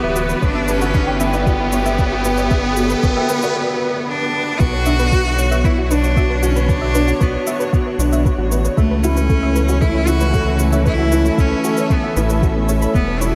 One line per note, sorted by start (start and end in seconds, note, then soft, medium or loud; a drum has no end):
0.00 0.34 D1 medium
0.00 0.43 E3 medium
0.00 0.43 G3 medium
0.00 0.16 B3 loud
0.00 0.45 B3 medium
0.00 0.45 F#4 medium
0.00 0.45 G4 loud
0.00 0.29 B4 medium
0.00 3.56 B4 medium
0.00 0.16 B4 loud
0.00 0.02 E5 loud
0.00 0.15 E5 loud
0.00 0.42 F#5 medium
0.00 riser medium
0.16 0.29 B3 loud
0.16 0.24 F#4 loud
0.16 shaker medium
0.29 0.42 B4 medium
0.29 0.38 B4 medium
0.29 shaker soft
0.42 2.95 G1 loud
0.42 3.55 D3 medium
0.42 0.55 B3 medium
0.42 0.72 D4 loud
0.42 0.47 C#5 medium
0.42 kick loud
0.42 shaker soft
0.50 3.56 B3 medium
0.55 0.68 E5 loud
0.68 1.24 C#4 loud
0.68 0.76 G4 medium
0.68 0.81 B4 loud
0.68 shaker medium
0.80 0.89 B3 medium
0.80 0.90 F#4 loud
0.80 shaker soft
0.94 1.07 B4 loud
0.94 1.03 B4 medium
0.94 kick loud
0.94 shaker soft
1.06 1.13 C#5 medium
1.06 1.20 G5 loud
1.15 3.55 G4 medium
1.20 1.33 B3 loud
1.20 4.07 B3 medium
1.20 1.33 E5 loud
1.20 shaker medium
1.33 1.46 B4 loud
1.33 1.46 D5 medium
1.33 shaker soft
1.46 1.59 B3 medium
1.46 1.55 F#4 loud
1.46 kick loud
1.46 shaker soft
1.60 1.68 B4 medium
1.72 1.80 G4 medium
1.72 1.78 C#5 medium
1.72 shaker medium
1.85 1.93 B3 medium
1.85 1.98 E5 loud
1.85 shaker soft
1.98 2.11 B4 loud
1.98 kick loud
1.98 shaker soft
2.12 2.20 F#4 loud
2.12 2.25 G5 loud
2.25 2.38 B3 loud
2.25 2.33 B4 medium
2.25 shaker medium
2.37 2.43 C#5 medium
2.37 2.51 D5 medium
2.37 shaker soft
2.50 2.64 B3 medium
2.50 2.63 E5 loud
2.50 kick loud
2.50 shaker soft
2.64 2.76 B4 loud
2.77 2.85 F#4 loud
2.77 2.85 G4 medium
2.77 shaker medium
2.90 2.98 B3 medium
2.90 2.99 B4 medium
2.90 shaker soft
3.03 3.19 G1 medium
3.03 3.16 B4 loud
3.03 3.08 C#5 medium
3.03 kick loud
3.03 shaker soft
3.17 3.29 E5 loud
3.17 3.29 G5 loud
3.29 3.42 B3 loud
3.29 3.42 B4 loud
3.29 shaker medium
3.42 3.51 F#4 loud
3.42 3.55 D5 medium
3.42 shaker soft
4.08 4.61 D4 loud
4.60 7.13 B1 loud
4.60 4.73 B3 medium
4.60 5.66 F#4 loud
4.60 4.68 B4 medium
4.60 kick loud
4.60 shaker soft
4.73 4.78 C#5 medium
4.86 4.99 D4 loud
4.86 4.98 E5 loud
4.86 shaker medium
4.99 5.12 B3 medium
4.99 5.12 B4 loud
4.99 shaker soft
5.12 5.25 F#4 medium
5.12 5.21 F#4 loud
5.12 kick loud
5.12 shaker soft
5.25 5.33 B4 medium
5.31 9.56 C#5 medium
5.38 5.46 B3 medium
5.38 5.43 C#5 medium
5.38 shaker medium
5.50 10.00 F#4 medium
5.50 5.64 B4 medium
5.50 5.64 E5 loud
5.50 shaker soft
5.64 5.77 B3 medium
5.64 5.83 E4 loud
5.64 5.77 B4 loud
5.64 kick loud
5.64 shaker soft
5.78 5.86 F#4 loud
5.84 5.93 E4 medium
5.91 6.03 D4 loud
5.91 6.45 D4 loud
5.91 5.99 B4 medium
5.91 shaker medium
6.04 6.16 B3 medium
6.04 6.09 C#5 medium
6.04 shaker soft
6.16 6.29 F#4 medium
6.16 6.29 E5 loud
6.16 kick loud
6.16 shaker soft
6.30 6.42 B4 loud
6.43 6.51 B3 medium
6.43 6.71 C#4 medium
6.43 6.51 F#4 loud
6.43 shaker medium
6.56 6.64 B4 medium
6.56 6.69 B4 medium
6.56 shaker soft
6.69 6.81 B3 medium
6.69 7.23 D4 loud
6.69 6.74 C#5 medium
6.69 kick loud
6.69 shaker soft
6.81 6.94 E5 loud
6.95 7.07 D4 loud
6.95 7.07 B4 loud
6.95 shaker medium
7.08 7.21 B3 medium
7.08 7.16 F#4 loud
7.08 shaker soft
7.20 7.37 B1 medium
7.20 7.73 B3 medium
7.20 7.34 F#4 medium
7.20 7.29 B4 medium
7.20 kick loud
7.20 shaker soft
7.34 7.39 C#5 medium
7.47 7.55 B3 medium
7.47 7.59 E5 loud
7.47 shaker medium
7.60 7.72 B4 loud
7.60 7.73 B4 medium
7.60 shaker soft
7.73 7.86 B3 medium
7.73 7.81 F#4 loud
7.73 kick loud
7.73 shaker soft
7.86 7.94 B4 medium
7.98 8.30 B1 loud
7.98 8.12 D4 loud
7.98 8.04 C#5 medium
7.98 shaker medium
8.12 8.25 B3 medium
8.12 8.25 E5 medium
8.12 shaker soft
8.25 8.38 F#4 medium
8.25 8.38 B4 medium
8.25 kick loud
8.25 shaker soft
8.38 8.69 A1 medium
8.38 8.47 F#4 loud
8.52 8.59 B3 medium
8.52 8.60 B4 medium
8.52 shaker medium
8.64 8.77 B4 medium
8.64 8.69 C#5 medium
8.64 shaker soft
8.77 11.30 C#2 loud
8.77 12.96 E3 medium
8.77 9.04 A3 loud
8.77 8.90 A3 medium
8.77 8.90 E5 loud
8.77 kick loud
8.77 shaker soft
8.91 9.03 B4 loud
9.03 9.82 C#4 loud
9.03 9.16 E4 loud
9.03 9.12 F#4 loud
9.03 shaker medium
9.09 13.35 C#4 medium
9.17 9.29 A3 medium
9.17 9.25 B4 medium
9.17 shaker soft
9.29 9.42 A4 medium
9.29 9.35 C#5 medium
9.29 kick loud
9.29 shaker soft
9.43 9.55 E5 loud
9.55 9.63 A3 medium
9.55 9.68 B4 loud
9.55 shaker medium
9.69 9.77 F#4 loud
9.69 9.81 C#5 medium
9.69 shaker soft
9.81 9.94 A3 medium
9.81 10.09 E4 loud
9.81 13.35 A4 medium
9.81 9.90 B4 medium
9.81 kick loud
9.81 shaker soft
9.94 10.00 C#5 medium
10.07 10.20 E4 loud
10.07 10.60 F#4 loud
10.07 10.20 E5 loud
10.07 shaker medium
10.20 10.33 A3 medium
10.20 10.33 B4 loud
10.20 shaker soft
10.33 10.42 F#4 loud
10.33 10.46 A4 medium
10.33 kick loud
10.33 shaker soft
10.46 10.55 B4 medium
10.59 10.68 A3 medium
10.59 10.65 C#5 medium
10.59 shaker medium
10.64 13.35 E5 medium
10.72 10.86 C#5 medium
10.72 10.85 E5 loud
10.72 shaker soft
10.85 10.99 A3 medium
10.85 11.42 E4 loud
10.85 10.98 B4 loud
10.85 kick loud
10.85 shaker soft
10.98 11.07 F#4 loud
11.12 11.25 E4 loud
11.12 11.20 B4 medium
11.12 shaker medium
11.25 11.38 A3 medium
11.25 11.30 C#5 medium
11.25 shaker soft
11.38 11.54 C#2 medium
11.38 11.94 C#4 loud
11.38 11.50 E5 loud
11.38 kick loud
11.38 shaker soft
11.51 11.64 B4 loud
11.64 11.72 A3 medium
11.64 11.73 F#4 loud
11.64 shaker medium
11.77 11.86 B4 medium
11.77 11.90 C#5 medium
11.77 shaker soft
11.90 12.03 A3 medium
11.90 12.19 B3 medium
11.90 11.95 C#5 medium
11.90 kick loud
11.90 shaker soft
12.04 12.16 E5 loud
12.16 12.87 A1 medium
12.16 12.69 A3 medium
12.16 12.29 E4 medium
12.16 12.25 B4 medium
12.16 shaker medium
12.29 12.43 A3 medium
12.29 12.34 B4 medium
12.29 shaker soft
12.42 12.55 F#4 loud
12.42 12.55 A4 medium
12.42 kick loud
12.42 shaker soft
12.56 12.68 B3 medium
12.69 12.77 A3 medium
12.69 12.74 C#5 medium
12.69 shaker medium
12.82 12.94 C#5 medium
12.82 12.87 B5 medium
12.82 shaker soft
12.94 13.35 E1 loud
12.94 13.35 G3 medium
12.94 13.21 B3 medium
12.94 13.07 B3 medium
12.94 13.06 B4 medium
12.94 kick loud
12.94 shaker soft
13.08 13.35 E4 medium
13.08 13.16 B4 medium
13.20 13.35 E4 loud
13.20 13.33 F#4 loud
13.20 13.26 C#5 medium
13.20 shaker medium